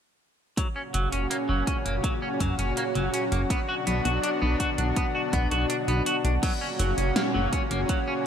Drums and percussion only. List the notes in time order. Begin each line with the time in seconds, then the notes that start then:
0.57 kick, closed hi-hat
0.94 closed hi-hat
1.12 closed hi-hat
1.31 closed hi-hat
1.67 kick, closed hi-hat
1.86 closed hi-hat
2.04 kick, closed hi-hat
2.40 kick, closed hi-hat
2.59 closed hi-hat
2.77 closed hi-hat
2.95 closed hi-hat
3.14 closed hi-hat
3.32 closed hi-hat
3.50 kick, closed hi-hat
3.87 closed hi-hat
4.05 closed hi-hat
4.23 closed hi-hat
4.60 kick, closed hi-hat
4.78 closed hi-hat
4.96 kick, closed hi-hat
5.33 kick, closed hi-hat
5.51 closed hi-hat
5.70 closed hi-hat
5.88 closed hi-hat
6.06 closed hi-hat
6.25 closed hi-hat
6.43 kick, closed hi-hat, crash
6.79 closed hi-hat
6.98 closed hi-hat
7.16 snare, closed hi-hat
7.53 kick, closed hi-hat
7.71 closed hi-hat
7.89 kick, closed hi-hat